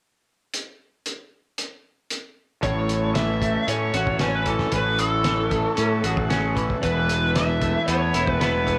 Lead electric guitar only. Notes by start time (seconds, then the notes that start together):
2.63 C#5
3.15 E5
3.69 C#5
4.21 B4
4.29 C#5
4.35 B4
4.48 A4
4.75 B4
5.00 A4
5.98 G#4
6.83 B4
7.36 E5
7.88 C#5
8.31 B4
8.41 B4